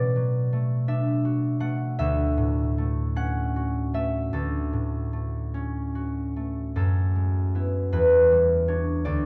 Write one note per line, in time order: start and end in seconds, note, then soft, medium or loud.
0.00 2.02 B2 medium
0.00 0.52 A3 soft
0.00 1.24 F#4 soft
0.00 1.39 A4 medium
0.00 2.01 B4 medium
0.00 3.69 D5 medium
0.16 4.06 F#3 soft
0.53 1.59 A3 soft
0.88 4.78 D4 medium
0.88 1.98 E5 medium
1.25 3.55 F#4 soft
1.60 2.77 A3 medium
1.60 3.15 F#5 medium
1.99 4.32 D2 medium
1.99 3.93 E5 loud
2.37 4.35 A2 medium
2.78 3.93 A3 medium
3.16 5.53 C#4 medium
3.16 7.07 F#5 loud
3.56 5.94 F#4 medium
3.94 5.12 A3 soft
3.94 4.36 E5 medium
4.33 6.79 D2 medium
4.33 6.75 A4 medium
4.73 6.79 A2 soft
5.13 6.35 A3 soft
5.54 7.96 C#4 soft
5.95 8.67 F#4 soft
6.36 9.26 A3 soft
6.76 7.95 F#2 medium
6.76 9.26 A4 medium
7.15 7.95 G#3 soft
7.55 9.08 B3 soft
7.55 9.26 E4 soft
7.92 9.08 E2 medium
7.92 9.08 B4 medium
8.32 9.26 G3 soft
8.68 9.26 D4 soft
8.68 9.08 F#4 soft
8.68 9.26 C#5 medium
9.05 9.26 D2 medium
9.05 9.26 D5 medium